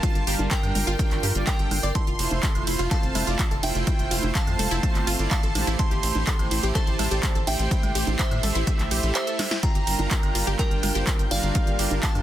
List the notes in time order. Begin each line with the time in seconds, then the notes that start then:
Already playing: G3 D4 F4 A#4 F5 A5 C6 C7
0.03 F4 F5, kick, closed hi-hat
0.15 G1, closed hi-hat
0.27 G1 G3 D4 F4 G4 A#4 G5, open hi-hat
0.39 G1, closed hi-hat, high conga
0.51 A#4 G5, kick, clap, closed hi-hat
0.63 G2 G3 D4 F4 A#4, closed hi-hat, high woodblock
0.75 G1 A#4 A#5, open hi-hat, low conga
0.87 G1 F4 F5, closed hi-hat
0.99 G3 D4 F4 A#4, kick, closed hi-hat, high conga
1.11 A1, clap, closed hi-hat
1.23 G2 G4 G5, open hi-hat
1.35 G1 G3 D4 F4 D5, closed hi-hat
1.47 A#4 G5, kick, clap, closed hi-hat
1.59 G1 G3 D4 F4 A4 G5 G6, closed hi-hat
1.71 G1, open hi-hat, high conga, low conga, high woodblock
1.83 G1 D5 D6, closed hi-hat
1.95 E4 E5 A5 C6, kick, closed hi-hat
2.07 F1 F4 F5, closed hi-hat
2.19 F1 A3 E4 F4 C5, open hi-hat, ride
2.31 F1, closed hi-hat, high conga
2.43 A4 A5, kick, clap, closed hi-hat
2.55 F1 A3 E4 F4 C5, closed hi-hat, high woodblock
2.67 F1 E4 E5, open hi-hat, ride
2.79 F1 F4 F5, closed hi-hat
2.91 A3 C4 F4 A4 C5 F5 A5, kick, clap, closed hi-hat, high conga
3.03 F1, closed hi-hat
3.15 F1 E4 E5, open hi-hat, ride, low conga, high woodblock
3.27 F1 A3 E4 F4 D5 F5, closed hi-hat
3.39 kick, clap, closed hi-hat
3.51 F1 A4 A5, closed hi-hat
3.63 F1 A3 E4 F4 C5 E5 G5, open hi-hat, ride, high conga
3.75 F1, closed hi-hat
3.87 E4 E5, kick, closed hi-hat
3.99 F1, closed hi-hat
4.11 F1 A3 E4 F4 C5 F5, open hi-hat, ride
4.23 F1, closed hi-hat, high conga
4.35 F5 A5, kick, clap, closed hi-hat
4.47 F2 A3 C4 F4 C5, closed hi-hat, high woodblock
4.59 F1 A4 A5, open hi-hat, ride, low conga
4.71 F1 E4 E5, closed hi-hat
4.83 A3 C4 F4 C5, kick, closed hi-hat, high conga
4.95 G1, clap, closed hi-hat
5.07 G1 F4 F5, open hi-hat, ride
5.19 G1 A3 E4 F4 D5, closed hi-hat
5.31 F5 A5, kick, clap, closed hi-hat
5.43 A1 A4 A5, closed hi-hat
5.55 A1 A3 E4 G4 C5, open hi-hat, ride, high conga, low conga, high woodblock
5.67 A1 E4 E5, closed hi-hat
5.79 E4 E5 A5 C6, kick, closed hi-hat
5.91 A1 G4 G5, closed hi-hat
6.03 A1 A3 E4 G4 C5, open hi-hat, ride
6.15 A1, closed hi-hat, high conga
6.27 A4 A5, kick, clap, closed hi-hat
6.39 A1 A3 E4 G4 C5, closed hi-hat, high woodblock
6.51 A1 E4 E5, open hi-hat, ride
6.63 A1 G4 G5, closed hi-hat
6.75 A3 E4 G4 A4 C5 A5, kick, clap, closed hi-hat, high conga
6.87 A1, closed hi-hat
6.99 A1 E4 E5, open hi-hat, ride, low conga, high woodblock
7.11 A1 A3 E4 G4 D5 G5, closed hi-hat
7.23 kick, clap, closed hi-hat
7.35 A1 A4 A5, closed hi-hat
7.47 A1 A3 E4 G4 C5 E5 G5, open hi-hat, ride, high conga
7.59 A1, closed hi-hat
7.71 E4 E5, kick, closed hi-hat
7.83 A1, closed hi-hat, low conga, high woodblock
7.95 A1 A3 E4 G4 C5 G5, open hi-hat, ride
8.07 A1, closed hi-hat, high conga
8.19 C5 E5, kick, clap, closed hi-hat
8.31 A2 A3 E4 G4 C5, closed hi-hat, high woodblock
8.43 A1 A4 A5, open hi-hat, ride, low conga
8.55 A1 E4 E5, closed hi-hat
8.67 A3 E4 G4 C5, kick, closed hi-hat, high conga
8.79 A#1, clap, closed hi-hat
8.91 A#1 G4 G5, open hi-hat, ride
9.03 A#1 A3 E4 G4 E5, closed hi-hat
9.15 C5 E5, clap, closed hi-hat
9.27 A3 E4 G4 A4 A5, closed hi-hat
9.39 snare, open hi-hat, ride, high conga, low conga, high woodblock
9.51 E4 E5, snare, closed hi-hat
9.63 D3 G3 A#3 F4 F5 G5 A#5 G6, kick, closed hi-hat
9.75 G1 G4 G5, closed hi-hat
9.87 G1 G3 D4 F4 A#4, open hi-hat, ride
9.99 G1, closed hi-hat, high conga
10.11 A#4 A#5, kick, clap, closed hi-hat
10.23 G1 G3 D4 F4 A#4, closed hi-hat, high woodblock
10.35 G1 F4 F5, open hi-hat, ride
10.47 G1 G4 G5, closed hi-hat
10.59 G3 D4 F4 A#4 G5 A#5, kick, clap, closed hi-hat, high conga
10.71 G1, closed hi-hat
10.83 G1 F4 F5, open hi-hat, ride, low conga, high woodblock
10.95 G1 G3 D4 F4 G4 C5 G5, closed hi-hat
11.07 kick, clap, closed hi-hat
11.19 G1 A#4 A#5, closed hi-hat
11.31 G1 G3 D4 F4 A#4 D5 F5, open hi-hat, ride, high conga
11.43 G1, closed hi-hat
11.55 F4 F5, kick, closed hi-hat
11.67 G1, closed hi-hat
11.79 G1 G3 D4 F4 G4 A#4 G5, open hi-hat, ride
11.91 G1, closed hi-hat, high conga
12.03 F5 A5, kick, clap, closed hi-hat
12.15 G2 G3 D4 F4 A#4, closed hi-hat, high woodblock